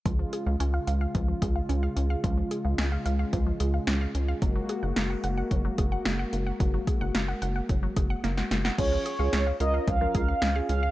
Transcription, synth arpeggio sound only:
\new Staff \with { instrumentName = "Synth arpeggio sound" } { \time 4/4 \key des \major \tempo 4 = 110 f16 f16 aes'16 f''16 des'16 f''16 f''16 f''16 f16 f16 aes'16 f''16 des'16 f''16 des'16 f''16 | f16 f16 aes'16 f''16 des'16 f''16 f''16 f''16 f16 f16 aes'16 f''16 des'16 f''16 des'16 f''16 | ges16 ges16 aes'16 ges''16 bes16 ges''16 ges''16 ges''16 ges16 ges16 aes'16 ges''16 bes16 ges''16 bes16 ges''16 | ges16 ges16 aes'16 ges''16 bes16 ges''16 ges''16 ges''16 ges16 ges16 aes'16 ges''16 bes16 ges''16 bes16 ges''16 |
f16 f16 aes'16 f''16 des'16 f''16 f''16 f''16 f16 f16 aes'16 f''16 des'16 f''16 des'16 f''16 | }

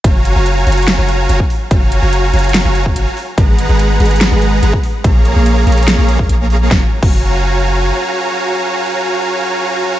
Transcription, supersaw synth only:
\new Staff \with { instrumentName = "Supersaw synth" } { \time 4/4 \key fis \major \tempo 4 = 144 <fis' cis'' eis'' gis'' ais''>8. <fis' cis'' eis'' gis'' ais''>8. <fis' cis'' eis'' gis'' ais''>8. <fis' cis'' eis'' gis'' ais''>8. <fis' cis'' eis'' gis'' ais''>16 r8. | <fis' cis'' eis'' gis'' ais''>8. <fis' cis'' eis'' gis'' ais''>8. <fis' cis'' eis'' gis'' ais''>8. <fis' cis'' eis'' gis'' ais''>8. <fis' cis'' eis'' gis'' ais''>16 r8. | <gis gis' b' fis'' ais''>8. <gis gis' b' fis'' ais''>8. <gis gis' b' fis'' ais''>8. <gis gis' b' fis'' ais''>8. <gis gis' b' fis'' ais''>16 r8. | <ais gis' cis'' eis'' ais''>8. <ais gis' cis'' eis'' ais''>8. <ais gis' cis'' eis'' ais''>8. <ais gis' cis'' eis'' ais''>8. <ais gis' cis'' eis'' ais''>4 |
<fis' cis'' eis'' gis'' ais''>16 r8 <fis' cis'' eis'' gis'' ais''>2.~ <fis' cis'' eis'' gis'' ais''>16~ | <fis' cis'' eis'' gis'' ais''>1 | }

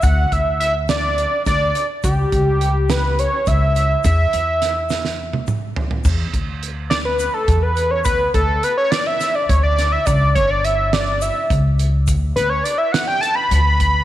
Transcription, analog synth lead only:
\new Staff \with { instrumentName = "Analog synth lead" } { \time 7/8 \key b \minor \tempo 4 = 105 fis''8 e''8 e''8 d''4 d''8. r16 | g'4. b'8 cis''8 e''4 | e''2~ e''8 r4 | r4. d''16 b'8 a'8 b'8 cis''16 |
b'8 a'8 b'16 cis''16 d''16 e''8 d''16 cis''16 d''8 e''16 | d''8 cis''16 d''16 e''8 d''8 e''8 r4 | r8 b'16 cis''16 d''16 e''16 fis''16 g''16 a''16 b''4~ b''16 | }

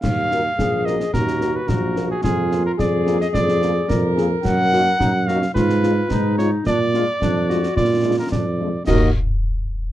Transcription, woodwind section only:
\new Staff \with { instrumentName = "Woodwind section" } { \time 2/4 \key ees \minor \tempo 4 = 109 r4 aes'4 | ges'4 ges'4 | f'4 aes'4~ | aes'4 bes'4~ |
bes'4 ees'8 ges'8 | f'4 ees'4 | d'8 f'8 d'8 ges'8 | f'4 d'8 r8 |
<ges' bes'>8 r4. | }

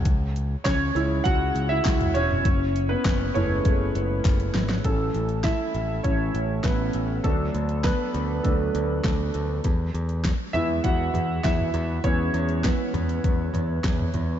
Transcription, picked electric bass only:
\new Staff \with { instrumentName = "Picked electric bass" } { \clef bass \time 4/4 \key a \major \tempo 4 = 100 cis,4 cis,8 cis,8 cis,8 cis,8 cis,8 e,,8 | fis,,4 fis,,8 fis,,8 fis,,8 fis,,8 fis,,8 gis,,8 | a,,8 a,,8. r16 a,,8 a,,8 a,,8 a,,8 a,,8 | d,8 d,8. r16 d,8 d,8 d,8 d,8 d,8 |
e,8 e,8. r16 e,8 e,8 e,8 e,8 e,8 | e,8 e,8. r16 e,8 e,8 e,8 e,8 e,8 | }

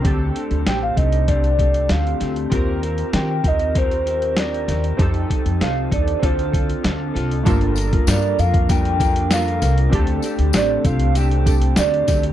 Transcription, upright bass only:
\new Staff \with { instrumentName = "Upright bass" } { \clef bass \time 4/4 \key g \minor \tempo 4 = 97 d,8 r16 d,16 a,,8 c,4. d,8 d,8 | ees,4 ees8 ees,2 ees,8 | f,8 r16 f,16 c,8 ees,8 d,4 d,8 c,8 | g,,4 g,8 f,2 c,8 |
d,8 r16 d,16 a,,8 c,4. d,8 d,8 | }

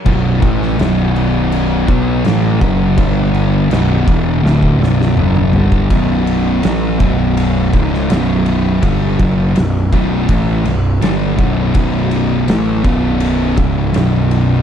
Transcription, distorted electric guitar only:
\new Staff \with { instrumentName = "Distorted electric guitar" } { \clef bass \time 4/4 \key b \minor \tempo 4 = 82 <b,, fis, b,>8 <a, e a>8 <b,, fis, b,>4. <b, fis b>8 <a, e a>8 <fis, cis fis>8 | <g, d g>4 <b,, fis, b,>8 <e, b, e>8 <d, a, d>8 <b,, fis, b,>8 <fis, cis fis>8 <g, d g>8 | <b,, fis, b,>4 <a, e a>8 <b,, fis, b,>4 <cis, gis, cis>8 <b,, fis, b,>4 | <g, d g>8 <fis, cis fis>8 <b,, fis,>8 <b,, fis, b,>8 <a, e a>8 <b,, fis,>8 <g, d g>8 <b,, fis, b,>8 |
<b,, fis, b,>4 <a, e a>8 <b,, fis, b,>4 <cis, gis, cis>8 <b,, fis, b,>4 | }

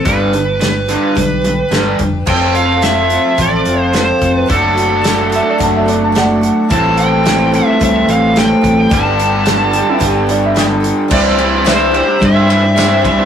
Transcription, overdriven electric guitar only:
\new Staff \with { instrumentName = "Overdriven electric guitar" } { \clef bass \time 4/4 \key c \major \tempo 4 = 109 <g, d g>8 <g, d>8 <g, d>8 <g, d g>8 <g, d>8 <g, d>8 <g, d g>8 <g, d>8 | <f c' f' a'>1 | <fis a d' a'>1 | <a, e c' e' a'>1 |
<g, d g b d' g'>1 | <c e g c' e'>8 <e g c' e'>8 <c e g c' e'>8 <e g c' e'>8. <g c' e'>16 <e g c' e'>8 <c e g c' e'>8 <e g c' e'>16 <g c' e'>16 | }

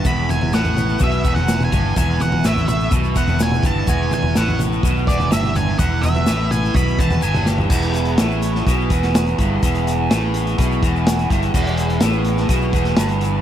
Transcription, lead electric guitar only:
\new Staff \with { instrumentName = "Lead electric guitar" } { \time 4/4 \key e \major \tempo 4 = 125 b''8 gis''8 fis''4 \tuplet 3/2 { e''4 fis''8~ fis''8 gis''4 } | gis''8 fis''8 e''8 e''8 r8 fis''8 gis''8 a''8 | gis''8 gis''8 fis''8 r4 d''8 e''8 gis''8 | fis''8 e''4 gis''8 b''8 a''8 gis''8 r8 |
r1 | r1 | r1 | }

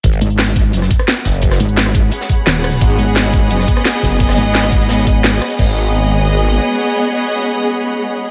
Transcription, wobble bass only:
\new Staff \with { instrumentName = "Wobble bass" } { \clef bass \time 4/4 \key gis \minor \tempo 4 = 173 r8 gis,,4. fis,,8 r4. | r8 gis,,4. r4 dis,,4 | r8 gis,,4. fis,,8 r4. | r8 gis,,4. gis,,4. r8 |
r1 | r1 | }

